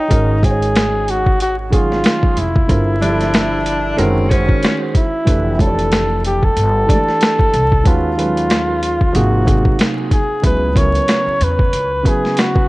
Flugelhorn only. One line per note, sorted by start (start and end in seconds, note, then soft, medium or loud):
0.00 0.46 D#4 loud
0.45 1.12 G#4 loud
1.10 1.41 F#4 loud
1.42 1.56 F#4 loud
1.74 2.40 F4 loud
2.39 4.31 E4 medium
4.97 5.63 E4 medium
5.61 6.25 A4 medium
6.26 6.46 G4 medium
6.44 7.89 A4 loud
7.88 9.17 F4 loud
9.15 9.85 F#4 medium
10.13 10.42 G#4 medium
10.46 10.79 B4 loud
10.77 11.45 C#5 medium
11.43 12.09 B4 loud
12.08 12.41 G#4 medium
12.39 12.68 F#4 medium